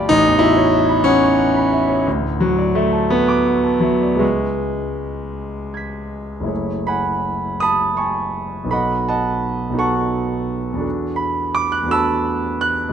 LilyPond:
\new Staff \with { instrumentName = "Grand piano" } { \time 6/8 \key fis \minor \tempo 4. = 56 << { dis'8 e'4 cis'8 r4 | r8 fis8 a8 b4 fis8 | gis4. r8 <gis''' b'''>4 | r8 <fis'' gis'' b''>4 <a'' b'' dis'''>8 <gis'' a'' cis'''>4 |
<dis'' fis'' b''>8 <dis'' fis'' a''>4 <fis'' a'' cis'''>4. | r8 b''8 d'''16 fis'''16 <a'' b'' e'''>4 fis'''8 | } \\ { a,,16 e,16 fis'16 cis''16 e''16 b''16 fis''16 cis'''16 fis''16 b''16 e''16 cis''16 | d,16 a,16 fis'16 d''16 e''16 a''16 fis''16 d'''16 fis''16 a''16 e''16 d''16 | <cis, gis' b' e'' cis'''>2. | <fis,, a e' gis' cis''>2. |
<b,, b dis' fis' a'>4. <b,, b dis' fis' a'>4. | <e, b d' fis' a'>4. <e, b d' fis' a'>4. | } >> }